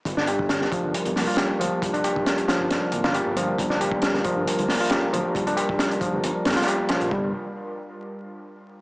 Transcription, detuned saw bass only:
X:1
M:4/4
L:1/16
Q:1/4=136
K:Gm
V:1 name="Detuned saw bass" clef=bass
G,,,4- G,,, z2 G,,, G,,, G,,, F,,, z3 D,,, z | z6 z G,,, G,,, z D,,, G,,, z G,,,2 z | G,,,4- G,,, z2 G,,, G,,, G,,, F,,, z3 D,,, z | z6 z G,,, G,,, z G,, z3 B,,, B,,, |
G,,,2 z12 z2 |]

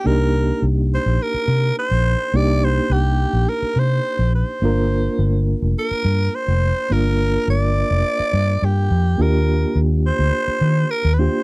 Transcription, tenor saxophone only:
X:1
M:4/4
L:1/16
Q:1/4=105
K:Gm
V:1 name="Tenor saxophone"
B4 z2 c2 B4 c4 | d2 c2 G4 B2 c4 c2- | c6 z2 B4 c4 | B4 d8 G4 |
B4 z2 c6 B3/2 =B/2 c2 |]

